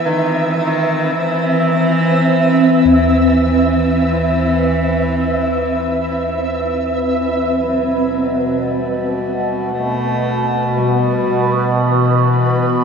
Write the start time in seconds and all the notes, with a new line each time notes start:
Already playing: C4 G4 B4 E5
0.06 D#3
0.58 D#3
1.12 E3
2.85 D#2
3.26 E3
7.56 B2 F#3 B4
8.63 G3
9.70 A3
10.78 G3
11.86 E3